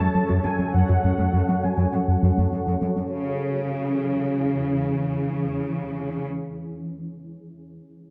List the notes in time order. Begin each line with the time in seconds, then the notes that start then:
Already playing: F#3 C#4 A4 C#5 A5
0.14 F#2 F#3 C#4
0.29 F#2 F#3
0.44 F#2 F#3 C#4 G#5
0.59 F#2 F#3 C#4
0.74 F#2 F#3 F#5
0.89 F#2 F#4
1.03 F#2 A3
1.18 F#2 A3
1.33 F#2 F#3
1.48 F#2 F#3 C#4
1.63 F#2 F#3 C#4 G#5
1.77 F#2 F#3
1.93 F#2 F#3 C#4 F#5
2.08 F#2
2.22 F#2 F#3
2.37 F#2 A3
2.52 F#2 F#3 C#4 F#5
2.67 F#2 F#3
2.81 F#2 F#3 C#4
2.96 F#2 F#3 C#4
3.11 C#3 E3 C#4 G#4 C#5